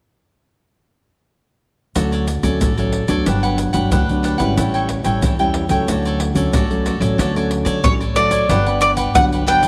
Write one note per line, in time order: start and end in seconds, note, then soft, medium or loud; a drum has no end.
1.95 2.37 D2 medium
1.95 2.58 D3 medium
1.95 2.26 F#3 medium
1.95 2.26 A3 medium
1.95 2.27 C#4 medium
1.95 2.11 F#4 soft
1.95 2.11 A4 soft
1.95 2.11 C#5 soft
1.95 2.11 D5 soft
1.95 pandeiro medium
1.95 shaker medium
1.95 surdo medium
2.12 2.26 A4 medium
2.12 2.27 C#5 medium
2.12 2.27 D5 medium
2.12 pandeiro soft
2.12 shaker soft
2.27 muted cavaquinho stroke soft
2.27 pandeiro medium
2.27 shaker medium
2.43 2.58 D2 medium
2.43 2.71 F#3 medium
2.43 2.72 A3 medium
2.43 2.72 C#4 medium
2.43 2.60 A4 medium
2.43 2.59 C#5 medium
2.43 2.59 D5 medium
2.43 pandeiro soft
2.43 shaker medium
2.43 surdo soft
2.61 3.03 A1 medium
2.61 3.23 A2 soft
2.61 2.76 F#4 soft
2.61 2.77 A4 soft
2.61 2.77 C#5 soft
2.61 2.76 D5 soft
2.61 pandeiro medium
2.61 shaker medium
2.61 surdo medium
2.77 3.05 F#3 medium
2.77 3.05 A3 medium
2.77 3.06 C#4 medium
2.77 3.09 A4 medium
2.77 3.09 C#5 medium
2.77 3.07 D5 medium
2.77 pandeiro soft
2.77 shaker soft
2.92 pandeiro medium
3.08 3.23 D2 medium
3.08 3.69 F#3 medium
3.08 3.69 B3 medium
3.08 3.70 D4 medium
3.08 3.25 A4 medium
3.08 3.25 C#5 medium
3.08 3.24 D5 medium
3.08 pandeiro medium
3.08 shaker medium
3.08 surdo soft
3.26 3.68 G1 medium
3.26 3.89 G2 medium
3.26 3.42 D4 soft
3.26 3.42 G4 soft
3.26 3.42 B4 soft
3.26 3.42 F#5 soft
3.26 pandeiro medium
3.26 shaker medium
3.26 surdo medium
3.43 3.57 G4 soft
3.43 3.58 B4 medium
3.43 3.58 F#5 medium
3.43 pandeiro soft
3.43 shaker soft
3.58 muted cavaquinho stroke soft
3.58 pandeiro medium
3.58 shaker medium
3.73 3.93 G1 medium
3.73 4.02 F#3 medium
3.73 4.02 B3 medium
3.73 4.02 D4 medium
3.73 3.90 G4 medium
3.73 3.90 B4 medium
3.73 3.89 F#5 medium
3.73 pandeiro medium
3.73 shaker medium
3.73 surdo soft
3.91 4.34 D2 medium
3.91 4.54 D3 medium
3.91 4.22 D4 medium
3.91 4.23 G4 medium
3.91 4.24 B4 medium
3.91 4.24 F#5 medium
3.91 pandeiro medium
3.91 shaker medium
3.91 surdo medium
4.09 4.37 F#3 medium
4.09 4.37 B3 medium
4.09 4.37 D4 medium
4.09 pandeiro soft
4.09 shaker soft
4.23 4.39 D4 soft
4.23 4.39 G4 medium
4.23 4.38 B4 medium
4.23 4.37 F#5 medium
4.23 pandeiro medium
4.23 shaker medium
4.38 4.54 G#1 medium
4.38 5.01 G3 medium
4.38 5.01 C#4 medium
4.38 5.01 E4 medium
4.38 4.56 G4 medium
4.38 4.55 B4 medium
4.38 4.54 F#5 medium
4.38 pandeiro medium
4.38 shaker medium
4.38 surdo soft
4.57 4.99 A1 medium
4.57 5.19 A2 soft
4.57 4.72 E4 soft
4.57 4.73 A4 soft
4.57 4.73 C#5 soft
4.57 4.73 G5 medium
4.57 pandeiro medium
4.57 shaker medium
4.57 surdo medium
4.74 4.89 A4 medium
4.74 4.89 C#5 medium
4.74 4.89 G5 medium
4.74 pandeiro soft
4.74 shaker soft
4.89 muted cavaquinho stroke soft
4.89 pandeiro medium
4.89 surdo soft
5.04 5.20 A1 medium
5.04 5.33 G3 medium
5.04 5.33 C#4 medium
5.04 5.33 E4 medium
5.04 5.21 A4 medium
5.04 5.21 C#5 medium
5.04 5.21 G5 medium
5.04 pandeiro medium
5.04 shaker medium
5.04 surdo soft
5.21 5.65 E2 medium
5.21 5.84 E3 soft
5.21 5.38 E4 soft
5.21 5.39 A4 soft
5.21 5.39 C#5 soft
5.21 pandeiro medium
5.21 shaker medium
5.21 surdo medium
5.26 5.38 G5 medium
5.39 5.67 G3 medium
5.39 5.67 C#4 medium
5.39 5.67 E4 medium
5.39 5.71 A4 soft
5.39 5.70 C#5 medium
5.39 5.69 G5 medium
5.39 pandeiro soft
5.39 shaker soft
5.54 pandeiro medium
5.69 5.85 C#2 medium
5.69 6.31 F#3 medium
5.69 6.31 A3 medium
5.69 6.31 C#4 medium
5.69 5.87 A4 medium
5.69 5.87 C#5 medium
5.69 5.86 G5 medium
5.69 pandeiro medium
5.69 shaker medium
5.69 surdo soft
5.88 6.30 D2 medium
5.88 6.50 D3 medium
5.88 6.04 F#4 soft
5.88 6.04 A4 soft
5.88 6.04 C#5 medium
5.88 6.04 D5 medium
5.88 pandeiro medium
5.88 shaker medium
5.88 surdo medium
6.05 6.19 A4 medium
6.05 6.20 C#5 medium
6.05 6.20 D5 medium
6.05 pandeiro soft
6.05 shaker soft
6.20 muted cavaquinho stroke soft
6.20 pandeiro medium
6.34 6.54 D2 medium
6.34 6.63 F#3 medium
6.34 6.64 A3 medium
6.34 6.64 C#4 medium
6.34 6.52 A4 soft
6.34 6.52 C#5 medium
6.34 6.51 D5 medium
6.34 pandeiro medium
6.34 shaker medium
6.34 surdo soft
6.52 6.95 A1 medium
6.52 7.15 A2 medium
6.52 6.84 F#4 medium
6.52 6.85 A4 medium
6.52 6.86 C#5 medium
6.52 6.86 D5 medium
6.52 pandeiro medium
6.52 shaker medium
6.52 surdo medium
6.70 6.97 F#3 medium
6.70 6.98 A3 medium
6.70 6.98 C#4 medium
6.70 pandeiro soft
6.70 shaker soft
6.85 7.01 F#4 medium
6.85 7.01 A4 medium
6.85 7.00 C#5 medium
6.85 6.99 D5 soft
6.85 pandeiro medium
6.85 shaker medium
7.00 7.15 A1 medium
7.00 7.34 F#3 medium
7.00 7.34 A3 medium
7.00 7.35 C#4 medium
7.00 7.18 A4 medium
7.00 7.17 C#5 medium
7.00 7.17 D5 medium
7.00 pandeiro medium
7.00 shaker medium
7.00 surdo soft
7.18 7.61 D2 medium
7.18 7.81 D3 medium
7.18 7.34 F#4 medium
7.18 7.34 A4 medium
7.18 7.34 C#5 medium
7.18 7.35 D5 medium
7.18 pandeiro medium
7.18 shaker medium
7.18 surdo medium
7.35 7.79 F#3 medium
7.35 7.79 A3 medium
7.35 7.80 C#4 medium
7.35 7.50 A4 soft
7.35 7.50 C#5 soft
7.35 7.50 D5 soft
7.35 pandeiro soft
7.35 shaker soft
7.51 muted cavaquinho stroke soft
7.51 pandeiro medium
7.65 7.81 D3 medium
7.65 7.99 A4 medium
7.65 7.98 C#5 medium
7.65 7.98 D5 medium
7.65 pandeiro medium
7.65 shaker medium
7.65 surdo soft
7.83 8.40 A1 medium
7.83 8.46 A2 medium
7.83 8.03 F#3 soft
7.83 8.03 A3 soft
7.83 8.03 C#4 soft
7.83 7.93 C#5 medium
7.83 pandeiro medium
7.83 shaker medium
7.83 surdo loud
8.01 8.15 A4 soft
8.01 8.16 C#5 soft
8.01 8.16 D5 soft
8.01 pandeiro soft
8.01 shaker soft
8.15 8.46 F#3 medium
8.15 8.46 A3 medium
8.15 8.31 F#4 soft
8.15 8.32 A4 soft
8.15 8.31 C#5 soft
8.15 8.80 D5 medium
8.15 8.30 D5 medium
8.15 pandeiro medium
8.15 shaker medium
8.31 8.48 A4 medium
8.31 8.48 C#5 medium
8.31 8.47 D5 medium
8.31 pandeiro medium
8.31 shaker medium
8.31 surdo soft
8.49 9.05 G1 medium
8.49 9.12 G2 medium
8.49 8.60 F#3 medium
8.49 8.60 B3 medium
8.49 8.65 D4 medium
8.49 8.60 D4 medium
8.49 8.65 G4 medium
8.49 8.65 B4 medium
8.49 8.65 F#5 medium
8.49 pandeiro medium
8.49 shaker medium
8.49 surdo medium
8.66 9.10 B3 medium
8.66 9.11 D4 medium
8.66 8.98 G4 soft
8.66 8.97 B4 soft
8.66 8.96 F#5 soft
8.66 pandeiro soft
8.66 shaker soft
8.81 8.91 D5 medium
8.81 pandeiro medium
8.81 shaker medium
8.97 9.30 G4 medium
8.97 9.30 B4 medium
8.97 9.29 F#5 medium
8.97 pandeiro medium
8.97 shaker medium
8.97 surdo soft
9.15 9.68 G1 medium
9.15 9.68 D3 medium
9.15 9.43 F#3 medium
9.15 9.43 B3 medium
9.15 9.43 D4 medium
9.15 9.24 F#5 medium
9.15 pandeiro medium
9.15 shaker medium
9.15 surdo medium
9.32 9.46 G4 soft
9.32 9.47 B4 soft
9.32 9.47 F#5 soft
9.32 pandeiro soft
9.32 shaker soft
9.47 9.68 F#3 medium
9.47 9.68 B3 medium
9.47 9.62 D4 medium
9.47 9.68 D4 medium
9.47 9.63 G4 medium
9.47 9.63 B4 medium
9.47 9.61 F#5 medium
9.47 9.68 G5 medium
9.47 pandeiro medium
9.63 9.68 G4 soft
9.63 9.68 B4 soft
9.63 9.68 F#5 soft
9.63 pandeiro medium
9.63 shaker medium
9.63 surdo soft